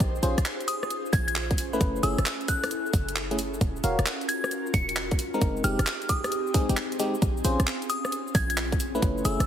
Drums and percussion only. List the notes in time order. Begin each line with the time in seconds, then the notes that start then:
0.00 kick, closed hi-hat, shaker
0.15 shaker
0.23 open hi-hat, shaker
0.38 cross-stick, closed hi-hat, shaker
0.45 clap, shaker
0.60 closed hi-hat, shaker
0.68 open hi-hat, shaker
0.83 cross-stick, shaker
0.90 closed hi-hat, shaker
1.06 shaker
1.13 kick, open hi-hat, shaker
1.28 closed hi-hat, shaker
1.36 clap, shaker
1.51 kick, closed hi-hat, shaker
1.58 open hi-hat, shaker
1.73 shaker
1.81 kick, closed hi-hat, shaker
1.96 shaker
2.03 open hi-hat, shaker
2.18 cross-stick, closed hi-hat, shaker
2.26 clap, shaker
2.41 closed hi-hat, shaker
2.48 kick, open hi-hat, shaker
2.64 cross-stick, open hi-hat, shaker
2.71 closed hi-hat, shaker
2.86 shaker
2.93 kick, open hi-hat, shaker
3.09 closed hi-hat, shaker
3.16 clap, shaker
3.31 closed hi-hat, shaker
3.39 open hi-hat, shaker
3.54 shaker
3.61 kick, closed hi-hat, shaker
3.76 shaker
3.84 open hi-hat, shaker
3.99 cross-stick, closed hi-hat, shaker
4.06 clap, shaker
4.21 closed hi-hat, shaker
4.29 open hi-hat, shaker
4.44 cross-stick, shaker
4.51 closed hi-hat, shaker
4.66 shaker
4.74 kick, open hi-hat, shaker
4.89 closed hi-hat, shaker
4.96 clap, shaker
5.11 kick, closed hi-hat, shaker
5.19 open hi-hat, shaker
5.34 shaker
5.41 kick, closed hi-hat, shaker
5.57 shaker
5.64 open hi-hat, shaker
5.79 cross-stick, closed hi-hat, shaker
5.87 clap, shaker
6.02 closed hi-hat, shaker
6.09 kick, open hi-hat, shaker
6.24 cross-stick, open hi-hat, shaker
6.32 closed hi-hat, shaker
6.47 shaker
6.54 kick, open hi-hat, shaker
6.69 closed hi-hat, shaker
6.77 clap, shaker
6.92 closed hi-hat, shaker
6.99 open hi-hat, shaker
7.15 shaker
7.22 kick, closed hi-hat, shaker
7.37 shaker
7.45 open hi-hat, shaker
7.60 cross-stick, closed hi-hat, shaker
7.67 clap, shaker
7.82 closed hi-hat, shaker
7.90 open hi-hat, shaker
8.05 cross-stick, shaker
8.12 closed hi-hat, shaker
8.27 shaker
8.35 kick, open hi-hat, shaker
8.50 closed hi-hat, shaker
8.57 clap, shaker
8.72 kick, closed hi-hat, shaker
8.80 open hi-hat, shaker
8.95 shaker
9.02 kick, closed hi-hat, shaker
9.18 shaker
9.25 open hi-hat, shaker
9.40 cross-stick, closed hi-hat, shaker